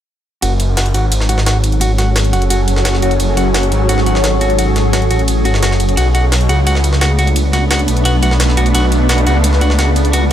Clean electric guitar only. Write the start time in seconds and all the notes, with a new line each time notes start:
0.42 F#4
0.77 F#4
0.94 F#4
1.29 F#4
1.46 F#4
1.81 F#4
1.98 F#4
2.33 F#4
2.50 F#4
2.85 F#4
3.03 F#4
3.37 F#4
3.55 F#4
3.89 F#4
4.07 F#4
4.41 F#4
4.59 F#4
4.93 F#4
5.11 F#4
5.45 F#4
5.63 F#4
5.97 F#4
6.15 F#4
6.49 F#4
6.67 F#4
7.01 F#4
7.19 F#4
7.53 F#4
7.71 F#4
8.05 F#4
8.23 F#4
8.57 F#4
8.75 F#4
9.09 F#4
9.27 F#4
9.61 F#4
9.79 F#4
10.14 F#4